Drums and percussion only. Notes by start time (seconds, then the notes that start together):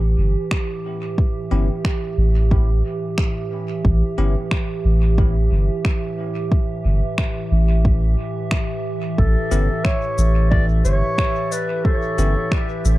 0.51 finger snap, kick
1.18 kick
1.85 finger snap, kick
2.51 kick
3.18 finger snap, kick
3.85 kick
4.51 finger snap, kick
5.18 kick
5.85 finger snap, kick
6.52 kick
7.18 finger snap, kick
7.85 kick
8.51 finger snap, kick
9.18 kick
9.52 cabasa
9.85 finger snap, kick
10.18 cabasa
10.52 kick
10.85 cabasa
11.18 finger snap, kick
11.52 cabasa
11.85 kick
12.19 cabasa
12.52 finger snap, kick
12.85 cabasa